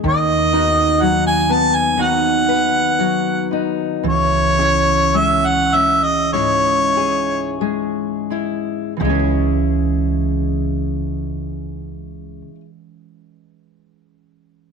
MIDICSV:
0, 0, Header, 1, 5, 480
1, 0, Start_track
1, 0, Key_signature, 4, "minor"
1, 0, Tempo, 967742
1, 20, Time_signature, 4, 2, 24, 8
1, 981, Tempo, 1010101
1, 1461, Tempo, 1052632
1, 1941, Tempo, 1109057
1, 2421, Tempo, 1183432
1, 2901, Tempo, 1279318
1, 3381, Tempo, 1395349
1, 3861, Tempo, 1442308
1, 5762, End_track
2, 0, Start_track
2, 0, Title_t, "Harmonica"
2, 0, Program_c, 0, 22
2, 41, Note_on_c, 0, 75, 83
2, 506, Note_on_c, 0, 78, 97
2, 513, Note_off_c, 0, 75, 0
2, 621, Note_off_c, 0, 78, 0
2, 629, Note_on_c, 0, 80, 91
2, 751, Note_on_c, 0, 81, 95
2, 759, Note_off_c, 0, 80, 0
2, 871, Note_on_c, 0, 80, 85
2, 878, Note_off_c, 0, 81, 0
2, 1002, Note_on_c, 0, 78, 94
2, 1009, Note_off_c, 0, 80, 0
2, 1708, Note_off_c, 0, 78, 0
2, 1962, Note_on_c, 0, 73, 87
2, 2430, Note_on_c, 0, 76, 85
2, 2436, Note_off_c, 0, 73, 0
2, 2550, Note_on_c, 0, 78, 94
2, 2556, Note_off_c, 0, 76, 0
2, 2665, Note_on_c, 0, 76, 93
2, 2671, Note_off_c, 0, 78, 0
2, 2778, Note_on_c, 0, 75, 82
2, 2784, Note_off_c, 0, 76, 0
2, 2898, Note_off_c, 0, 75, 0
2, 2901, Note_on_c, 0, 73, 81
2, 3366, Note_off_c, 0, 73, 0
2, 5762, End_track
3, 0, Start_track
3, 0, Title_t, "Harp"
3, 0, Program_c, 1, 46
3, 0, Note_on_c, 1, 61, 61
3, 0, Note_on_c, 1, 68, 66
3, 22, Note_on_c, 1, 51, 73
3, 260, Note_on_c, 1, 59, 55
3, 263, Note_on_c, 1, 63, 56
3, 268, Note_on_c, 1, 66, 63
3, 497, Note_off_c, 1, 63, 0
3, 499, Note_on_c, 1, 63, 58
3, 513, Note_off_c, 1, 61, 0
3, 677, Note_off_c, 1, 68, 0
3, 737, Note_off_c, 1, 59, 0
3, 739, Note_on_c, 1, 59, 61
3, 979, Note_off_c, 1, 59, 0
3, 981, Note_on_c, 1, 59, 66
3, 983, Note_off_c, 1, 63, 0
3, 985, Note_on_c, 1, 63, 63
3, 986, Note_off_c, 1, 66, 0
3, 988, Note_on_c, 1, 66, 68
3, 1462, Note_off_c, 1, 66, 0
3, 1464, Note_on_c, 1, 66, 57
3, 1697, Note_off_c, 1, 59, 0
3, 1699, Note_on_c, 1, 59, 57
3, 1897, Note_off_c, 1, 51, 0
3, 1938, Note_on_c, 1, 52, 74
3, 2173, Note_on_c, 1, 56, 53
3, 2177, Note_on_c, 1, 61, 57
3, 2179, Note_on_c, 1, 68, 62
3, 2222, Note_off_c, 1, 63, 0
3, 2417, Note_off_c, 1, 61, 0
3, 2419, Note_on_c, 1, 61, 54
3, 2535, Note_off_c, 1, 66, 0
3, 2648, Note_off_c, 1, 56, 0
3, 2653, Note_on_c, 1, 56, 51
3, 2891, Note_off_c, 1, 56, 0
3, 2896, Note_on_c, 1, 56, 57
3, 2898, Note_off_c, 1, 61, 0
3, 2900, Note_on_c, 1, 61, 62
3, 2901, Note_off_c, 1, 68, 0
3, 2903, Note_on_c, 1, 68, 63
3, 3007, Note_off_c, 1, 59, 0
3, 3379, Note_off_c, 1, 68, 0
3, 3381, Note_on_c, 1, 68, 57
3, 3491, Note_off_c, 1, 52, 0
3, 3614, Note_off_c, 1, 56, 0
3, 3618, Note_on_c, 1, 56, 59
3, 3847, Note_on_c, 1, 52, 67
3, 3859, Note_off_c, 1, 56, 0
3, 3863, Note_on_c, 1, 56, 74
3, 3876, Note_off_c, 1, 61, 0
3, 3877, Note_on_c, 1, 61, 78
3, 3887, Note_off_c, 1, 68, 0
3, 3889, Note_on_c, 1, 68, 78
3, 5175, Note_off_c, 1, 68, 0
3, 5516, Note_off_c, 1, 61, 0
3, 5762, Note_off_c, 1, 52, 0
3, 5762, Note_off_c, 1, 56, 0
3, 5762, End_track
4, 0, Start_track
4, 0, Title_t, "Steel-string acoustic guitar"
4, 0, Program_c, 2, 25
4, 20, Note_on_c, 2, 51, 66
4, 265, Note_on_c, 2, 63, 60
4, 502, Note_on_c, 2, 54, 63
4, 744, Note_on_c, 2, 59, 59
4, 973, Note_off_c, 2, 51, 0
4, 979, Note_on_c, 2, 51, 68
4, 980, Note_off_c, 2, 63, 0
4, 986, Note_on_c, 2, 63, 63
4, 1222, Note_on_c, 2, 71, 61
4, 1456, Note_off_c, 2, 54, 0
4, 1462, Note_on_c, 2, 54, 60
4, 1700, Note_off_c, 2, 63, 0
4, 1706, Note_on_c, 2, 63, 55
4, 1911, Note_off_c, 2, 51, 0
4, 1913, Note_off_c, 2, 71, 0
4, 1941, Note_off_c, 2, 54, 0
4, 1943, Note_on_c, 2, 49, 62
4, 1944, Note_off_c, 2, 59, 0
4, 1945, Note_off_c, 2, 63, 0
4, 2183, Note_on_c, 2, 64, 58
4, 2417, Note_on_c, 2, 56, 66
4, 2664, Note_on_c, 2, 61, 56
4, 2900, Note_off_c, 2, 64, 0
4, 2902, Note_off_c, 2, 49, 0
4, 2903, Note_on_c, 2, 44, 59
4, 2906, Note_on_c, 2, 64, 64
4, 3140, Note_on_c, 2, 68, 55
4, 3375, Note_off_c, 2, 56, 0
4, 3380, Note_on_c, 2, 56, 58
4, 3618, Note_off_c, 2, 64, 0
4, 3623, Note_on_c, 2, 64, 48
4, 3830, Note_off_c, 2, 56, 0
4, 3834, Note_off_c, 2, 61, 0
4, 3834, Note_off_c, 2, 64, 0
4, 3858, Note_on_c, 2, 49, 61
4, 3862, Note_off_c, 2, 44, 0
4, 3874, Note_on_c, 2, 56, 48
4, 3892, Note_on_c, 2, 61, 50
4, 3908, Note_on_c, 2, 64, 50
4, 3920, Note_off_c, 2, 68, 0
4, 3924, Note_on_c, 2, 68, 48
4, 5023, Note_off_c, 2, 49, 0
4, 5039, Note_off_c, 2, 56, 0
4, 5057, Note_off_c, 2, 61, 0
4, 5072, Note_off_c, 2, 64, 0
4, 5088, Note_off_c, 2, 68, 0
4, 5762, End_track
5, 0, Start_track
5, 0, Title_t, "Upright bass"
5, 0, Program_c, 3, 32
5, 18, Note_on_c, 3, 39, 82
5, 1921, Note_off_c, 3, 39, 0
5, 1941, Note_on_c, 3, 37, 77
5, 3847, Note_off_c, 3, 37, 0
5, 3861, Note_on_c, 3, 37, 88
5, 4993, Note_off_c, 3, 37, 0
5, 5762, End_track
0, 0, End_of_file